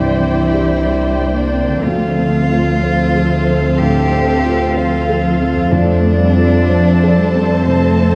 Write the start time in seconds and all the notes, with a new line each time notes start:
Already playing: C2 G2 C3 E3 G3 C4 D4 E4 G4 C5 D5 E5 G5
0.20 C4
0.54 G4
0.85 G3 C5
1.20 D5
1.34 A#3 D4 D5
1.53 C4
1.67 D3
1.71 C4
1.75 F3
1.80 D2 A3 F4 A4 F5
1.84 D2 D3 C4 C5 F5
2.18 C4
2.50 F4
2.80 F3 C5
3.16 A4
3.48 C4
3.78 A2 D3 G4 G5
4.12 C4
4.45 F4
4.75 F3 F4 C5 F5
5.08 A4
5.41 C4
5.54 F2
5.58 C4
5.67 A3 D4 A4
5.71 F2 A3 C4 A4 C5 D5 A5
6.05 C4
6.20 G3
6.37 F4
6.68 F3 C5
7.03 A4
7.17 G3
7.35 C4
7.65 C3 A3 C4 C5
8.00 C4